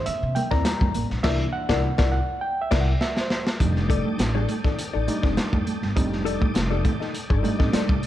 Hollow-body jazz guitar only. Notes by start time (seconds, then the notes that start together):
0.51 E4 A#4 D5
1.24 E4 A#4 D5
1.69 E4 A#4 D5
1.98 E4 A#4 D5
2.71 E4 A#4 D5
3.89 D#4 A4 D5
4.35 D#4 A4 D5
4.64 D#4 A4 D5
4.93 D#4 A4 D5
5.23 D#4 A4 D5
6.25 D#4 A4 D5
6.71 D#4 A4 D5
7.00 D#4 A4 D#5
7.30 D#4 A4 D5
7.59 D#4 A4 D#5
7.73 D#4 A4 D5